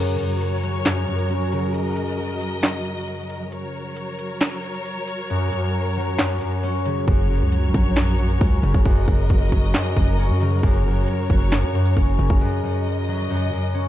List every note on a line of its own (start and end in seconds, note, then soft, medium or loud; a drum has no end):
0.00 0.18 F#2 medium
0.00 3.49 F#3 medium
0.00 1.30 C#4 loud
0.00 0.62 F#4 medium
0.00 3.49 F#4 medium
0.00 0.68 G#4 medium
0.00 1.64 A#4 medium
0.00 3.49 A#4 medium
0.00 1.73 C#5 medium
0.19 0.84 F#2 medium
0.41 closed hi-hat medium
0.63 1.57 F#3 medium
0.63 closed hi-hat medium
0.86 1.07 F#2 medium
0.86 snare loud
0.86 clap medium
0.86 closed hi-hat medium
1.08 3.57 F#2 medium
1.08 closed hi-hat soft
1.19 closed hi-hat medium
1.30 4.20 C#4 medium
1.30 closed hi-hat medium
1.52 3.57 C#3 medium
1.52 closed hi-hat medium
1.74 3.50 D#5 medium
1.74 closed hi-hat medium
1.97 closed hi-hat medium
2.41 closed hi-hat medium
2.63 snare loud
2.63 clap medium
2.63 closed hi-hat medium
2.85 closed hi-hat medium
3.08 closed hi-hat medium
3.30 closed hi-hat medium
3.52 13.88 F#3 medium
3.52 13.88 F#4 medium
3.52 7.04 A#4 medium
3.52 7.04 C#5 medium
3.52 closed hi-hat medium
3.97 closed hi-hat medium
4.19 closed hi-hat medium
4.41 snare loud
4.41 clap medium
4.41 closed hi-hat medium
4.63 closed hi-hat soft
4.74 closed hi-hat medium
4.86 closed hi-hat medium
5.08 closed hi-hat medium
5.30 5.51 F#2 loud
5.30 closed hi-hat medium
5.52 6.18 F#2 medium
5.52 closed hi-hat medium
5.97 6.91 F#3 medium
5.97 open hi-hat medium
6.19 6.40 F#2 medium
6.19 snare loud
6.19 clap medium
6.19 closed hi-hat medium
6.41 7.07 F#2 medium
6.41 closed hi-hat medium
6.52 closed hi-hat soft
6.63 8.41 C#4 loud
6.63 closed hi-hat medium
6.86 7.13 C#3 medium
6.86 closed hi-hat medium
7.08 7.43 F#1 loud
7.08 7.29 F#2 medium
7.08 13.88 A#4 medium
7.08 8.84 C#5 medium
7.08 kick loud
7.08 closed hi-hat medium
7.30 7.95 F#2 medium
7.41 7.73 C#2 loud
7.52 closed hi-hat medium
7.74 8.38 A#1 loud
7.74 8.68 F#3 medium
7.74 kick loud
7.74 closed hi-hat medium
7.97 8.18 F#2 medium
7.97 snare loud
7.97 clap medium
7.97 closed hi-hat medium
8.19 8.84 F#2 medium
8.19 closed hi-hat soft
8.30 closed hi-hat medium
8.41 8.62 C#2 loud
8.41 10.19 C#4 medium
8.41 kick medium
8.41 closed hi-hat medium
8.63 8.74 F#1 loud
8.63 10.40 C#3 medium
8.63 closed hi-hat medium
8.74 9.06 F#1 loud
8.74 kick loud
8.85 9.07 F#2 medium
8.85 10.62 D#5 medium
8.85 kick loud
8.85 closed hi-hat medium
9.08 9.29 F#1 loud
9.08 9.73 F#2 medium
9.08 kick loud
9.08 closed hi-hat medium
9.30 9.51 F#1 loud
9.30 kick loud
9.52 9.74 F#1 loud
9.52 10.46 F#3 medium
9.52 kick medium
9.52 closed hi-hat medium
9.74 9.96 F#2 medium
9.74 snare loud
9.74 clap medium
9.74 closed hi-hat medium
9.97 10.31 F#1 loud
9.97 10.62 F#2 medium
9.97 kick loud
9.97 closed hi-hat medium
10.19 11.96 C#4 loud
10.19 closed hi-hat medium
10.30 10.62 F#2 loud
10.41 10.68 C#3 medium
10.41 closed hi-hat medium
10.63 11.06 F#1 loud
10.63 10.85 F#2 loud
10.63 12.39 C#5 medium
10.63 kick loud
10.63 closed hi-hat medium
10.86 11.51 F#2 medium
11.08 closed hi-hat medium
11.30 11.65 F#1 loud
11.30 12.24 F#3 medium
11.30 kick medium
11.30 closed hi-hat medium
11.52 11.73 F#2 medium
11.52 snare loud
11.52 clap medium
11.52 closed hi-hat medium
11.63 11.95 F#2 loud
11.74 12.40 F#2 medium
11.74 closed hi-hat soft
11.86 closed hi-hat medium
11.97 12.18 F#1 loud
11.97 13.74 C#4 loud
11.97 kick medium
11.97 closed hi-hat medium
12.19 12.30 F#1 loud
12.19 13.88 C#3 medium
12.19 closed hi-hat medium
12.30 12.41 F#1 loud
12.30 kick loud
12.41 12.62 F#2 loud
12.41 13.88 D#5 medium
12.63 13.29 F#2 medium
13.08 13.88 F#3 medium
13.30 13.51 F#2 medium
13.52 13.88 F#2 medium
13.74 13.88 C#4 loud